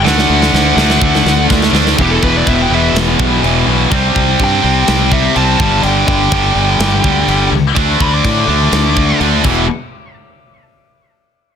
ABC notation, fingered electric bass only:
X:1
M:4/4
L:1/8
Q:1/4=125
K:Em
V:1 name="Fingered electric bass" clef=bass
D,, D,, D,, D,, D,, D,, D,, D,, | E,,, E,,, E,,, E,,, E,,, B,,, E,,, B,,, | C,, C,, G,, C,, C,,2 C,, G,,, | G,,, G,,, G,,, G,,, G,,, D,, G,,, ^C,, |
D,, D,, A,, D,, D,,2 D,, E,,, | z8 |]